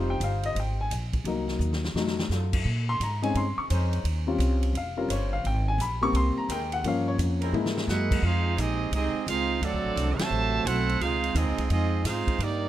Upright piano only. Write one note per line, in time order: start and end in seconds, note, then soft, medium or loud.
0.00 0.13 G3 medium
0.00 0.13 C4 soft
0.00 0.13 D#4 soft
0.00 0.13 F4 medium
0.10 0.22 G5 medium
0.24 0.45 F5 medium
0.46 0.57 D#5 medium
0.60 0.80 G5 medium
0.81 0.92 G#5 medium
1.26 1.81 F#3 medium
1.26 1.81 A#3 soft
1.26 1.82 D#4 medium
1.96 2.22 F#3 medium
1.96 2.22 A3 soft
1.96 2.22 D#4 medium
2.89 3.01 C6 loud
3.03 3.24 A#5 medium
3.22 3.43 G#3 medium
3.22 3.43 C4 soft
3.22 3.43 C#4 soft
3.22 3.43 D#4 medium
3.22 3.35 G#5 medium
3.37 3.58 C6 medium
3.58 3.65 C#6 medium
4.27 4.72 G3 medium
4.27 4.72 C4 soft
4.27 4.72 C#4 soft
4.27 4.73 F4 medium
4.77 4.98 F5 medium
4.97 5.08 G3 soft
4.97 5.08 C4 soft
4.97 5.09 C#4 soft
4.97 5.09 F4 medium
4.97 5.10 A#4 medium
5.11 5.33 C#5 medium
5.33 5.45 F5 medium
5.47 5.68 G5 medium
5.68 5.80 G#5 medium
5.81 6.02 B5 medium
6.01 6.46 G3 medium
6.01 6.47 A#3 medium
6.01 6.47 C4 medium
6.01 6.14 C#6 loud
6.16 6.37 C6 medium
6.38 6.49 A#5 medium
6.52 6.72 G5 medium
6.73 6.84 F#5 loud
6.85 7.50 F3 medium
6.85 7.50 A#3 medium
6.85 7.51 C#4 medium
6.85 7.08 F5 medium
7.08 7.15 C#5 medium
7.53 8.19 G#3 medium
7.53 8.19 A#3 soft
7.53 8.20 E4 medium